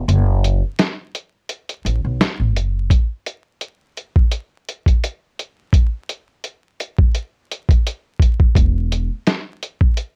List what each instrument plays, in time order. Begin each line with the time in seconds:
0.08 upright bass F#1, closed hi-hat
0.44 closed hi-hat
0.79 snare, closed hi-hat
1.15 closed hi-hat
1.49 closed hi-hat
1.69 closed hi-hat
1.85 upright bass A1, closed hi-hat
2.05 upright bass B1
2.21 snare, closed hi-hat
2.40 upright bass A1
2.55 upright bass F#1, closed hi-hat
2.90 kick, closed hi-hat
3.26 closed hi-hat
3.61 closed hi-hat
3.97 closed hi-hat
4.16 kick
4.32 closed hi-hat
4.69 closed hi-hat
4.86 kick, closed hi-hat
5.04 closed hi-hat
5.39 closed hi-hat
5.73 kick, closed hi-hat
6.09 closed hi-hat
6.44 closed hi-hat
6.80 closed hi-hat
6.98 kick
7.15 closed hi-hat
7.51 closed hi-hat
7.69 kick, closed hi-hat
7.87 closed hi-hat
8.20 kick, closed hi-hat
8.40 kick
8.55 upright bass E1, kick, closed hi-hat
8.92 closed hi-hat
9.27 snare, closed hi-hat
9.63 closed hi-hat
9.81 kick
9.97 closed hi-hat